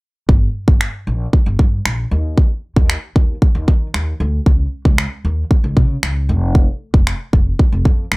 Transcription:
0.29 0.47 G1 loud
0.29 kick loud
0.68 0.86 G1 medium
0.68 kick medium
0.81 finger snap loud
1.07 1.25 A#1 medium
1.33 kick medium
1.46 1.55 G1 medium
1.59 1.77 G2 loud
1.59 kick medium
1.85 2.03 A#1 medium
1.85 finger snap loud
2.11 2.47 D#2 medium
2.38 kick loud
2.76 2.94 D#2 medium
2.76 kick medium
2.90 finger snap loud
3.16 3.34 D#2 medium
3.16 kick medium
3.42 kick medium
3.55 3.64 D#2 medium
3.68 3.86 D#3 loud
3.68 kick medium
3.94 4.12 D#2 medium
3.94 finger snap loud
4.20 4.38 D2 medium
4.46 4.64 C#2 medium
4.46 kick medium
4.85 5.03 C#2 loud
4.85 kick medium
4.98 finger snap loud
5.25 5.43 D#2 medium
5.51 kick medium
5.64 5.78 C#2 medium
5.77 5.95 C#3 medium
5.77 kick medium
6.03 6.31 C#2 medium
6.03 finger snap loud
6.29 6.65 F1 loud
6.55 kick loud
6.94 7.12 F1 medium
6.94 kick medium
7.07 finger snap loud
7.33 7.51 F1 medium
7.33 kick medium
7.59 kick medium
7.72 7.81 F1 loud
7.85 8.03 F2 medium
7.85 kick medium
8.12 8.17 F1 medium
8.12 finger snap loud

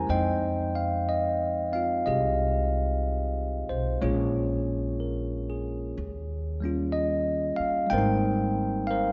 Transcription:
0.07 2.02 F2 medium
0.07 4.00 G#3 soft
0.07 1.71 C4 soft
0.07 2.02 C5 medium
0.07 1.08 D#5 medium
0.07 0.76 G5 medium
0.11 4.03 D#4 soft
0.75 1.06 F5 medium
1.09 1.69 D#5 medium
1.73 4.01 C4 soft
1.73 4.01 F4 soft
1.73 2.04 F5 medium
2.06 3.65 C2 medium
2.06 3.99 G4 soft
2.06 3.98 G#4 soft
2.06 3.00 D#5 medium
3.69 4.00 B1 medium
3.69 4.03 C5 medium
4.01 5.93 A#1 medium
4.01 5.96 G#3 soft
4.01 5.97 A#3 soft
4.01 5.97 C#4 soft
4.01 5.97 F4 medium
4.01 5.48 G#4 medium
4.01 6.90 C#5 medium
5.00 5.76 A#4 soft
5.50 6.18 G#4 soft
5.97 7.54 D#2 medium
6.60 7.85 G3 soft
6.60 7.89 A#3 soft
6.60 7.92 C#4 soft
6.65 7.93 F4 medium
6.92 7.53 D#5 medium
7.56 7.91 F5 medium
7.56 muted upright bass stroke soft
7.87 9.12 G3 medium
7.87 8.90 G5 loud
7.91 9.12 G#1 medium
7.91 9.12 A#3 soft
7.91 9.12 C4 soft
7.91 8.89 A#4 medium
7.91 8.90 C5 medium
7.98 9.12 D#4 medium
8.87 9.12 A#4 medium
8.87 9.12 C5 medium
8.87 9.12 F5 medium

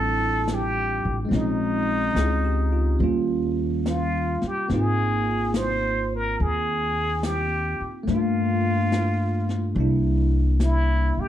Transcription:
0.00 1.00 A1 medium
0.00 1.32 G3 soft
0.00 1.28 C4 soft
0.00 1.32 D4 soft
0.00 1.33 E4 soft
0.00 1.33 F4 soft
0.00 0.56 A4 medium
0.48 snare soft
0.48 hi-hat pedal soft
0.54 1.18 G4 medium
1.05 1.30 A1 medium
1.25 2.97 G#3 medium
1.25 2.99 C4 soft
1.31 2.11 A#1 medium
1.31 3.01 C#4 soft
1.31 brush sweep soft
1.31 snare soft
1.36 3.02 D#4 medium
1.36 2.99 D#4 medium
2.15 2.96 C#2 medium
2.15 2.70 G#4 soft
2.15 snare soft
2.15 hi-hat pedal soft
2.45 2.88 G4 soft
2.72 3.03 F4 soft
2.99 4.39 D#2 medium
2.99 4.69 G3 soft
2.99 4.67 A#3 soft
2.99 4.71 C#4 soft
2.99 brush sweep soft
3.04 4.72 F4 medium
3.86 4.48 F4 medium
3.86 snare soft
3.86 hi-hat pedal soft
4.42 muted upright bass stroke soft
4.42 snare soft
4.47 4.72 G4 medium
4.68 6.35 G#1 medium
4.68 8.06 A#3 soft
4.68 8.08 C4 soft
4.68 brush sweep soft
4.68 snare soft
4.72 8.09 D#4 soft
4.72 8.10 F4 soft
4.72 5.58 G#4 medium
5.54 6.14 C5 medium
5.54 snare soft
5.54 hi-hat pedal soft
6.15 6.43 A#4 medium
6.39 7.77 D#2 medium
6.39 7.25 G#4 medium
6.39 brush sweep soft
7.23 7.91 G4 medium
7.23 snare soft
7.23 hi-hat pedal soft
7.80 muted upright bass stroke soft
8.03 9.74 A3 medium
8.07 9.72 G2 medium
8.07 9.76 A#3 soft
8.07 9.77 D4 soft
8.07 9.74 F4 medium
8.07 brush sweep soft
8.07 snare soft
8.15 9.80 F4 soft
8.92 snare soft
8.92 hi-hat pedal soft
9.49 snare soft
9.75 11.13 C2 medium
9.75 11.28 G3 soft
9.75 11.28 A#3 soft
9.75 11.28 D4 soft
9.75 brush sweep soft
9.80 11.28 E4 soft
10.60 snare soft
10.60 hi-hat pedal soft
10.64 11.22 E4 medium
11.17 11.28 G4 medium
11.17 muted upright bass stroke soft

